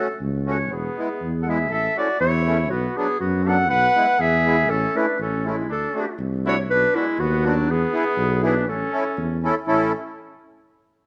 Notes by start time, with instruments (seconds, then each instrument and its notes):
Already playing: clarinet A4
0.21 tuba C#2
0.46 accordion A3 C#4 F#4
0.51 clarinet C#5
0.70 tuba E1, trumpet B3, clarinet G#4
0.97 accordion G#3 B3 E4
1.21 tuba E2
1.42 trumpet A4, clarinet F#5
1.46 accordion G#3 B3 E4, trumpet G#4, clarinet E5
1.69 tuba A1, trumpet A4
1.73 clarinet E5
1.96 accordion A3 C#4 E4, trumpet F#4, clarinet D5
2.20 tuba E2, trumpet E4, clarinet C#5
2.46 accordion A3 C#4 E4
2.70 tuba B1, trumpet B3, clarinet F#4
2.96 accordion F#3 B3 D4, trumpet B3, clarinet G#4
3.19 tuba F#2, trumpet B3, clarinet F#4
3.44 accordion F#3 B3 D4, trumpet A4
3.49 clarinet F#5
3.69 tuba B1, trumpet B4, clarinet F#5
3.95 accordion G#3 B3 E4
4.19 tuba E2, trumpet G#4, clarinet E5
4.45 accordion G#3 B3 E4
4.69 tuba A1, trumpet C#4, clarinet A4
4.95 accordion A3 C#4 E4, trumpet D4, clarinet B4
5.19 tuba A1, trumpet C#4, clarinet A4
5.45 trumpet G#3, accordion A3 C#4 E4, clarinet E4
5.69 tuba D2, trumpet D4, clarinet A4
5.94 accordion A3 D4 F#4
6.18 tuba C2
6.44 accordion A3 D4 F#4, trumpet E4
6.49 clarinet C#5
6.69 tuba B1, trumpet D4, clarinet B4
6.94 accordion B3 D4 F#4, clarinet E4
6.98 trumpet G#3
7.18 tuba D#2, trumpet B3, clarinet F#4
7.43 trumpet F#3, accordion B3 D4 F#4
7.49 clarinet D4
7.68 tuba E2, trumpet B3, clarinet G#4
7.92 accordion B3 E4 G#4
8.17 tuba B1
8.41 accordion B3 E4 G#4, trumpet D4
8.46 clarinet B4
8.67 tuba A1, trumpet C#4, clarinet A4
8.92 accordion C#4 E4 A4
9.17 tuba E2
9.43 accordion C#4 E4 A4
9.67 tuba A1, accordion C#4 E4 A4, trumpet C#4, clarinet A4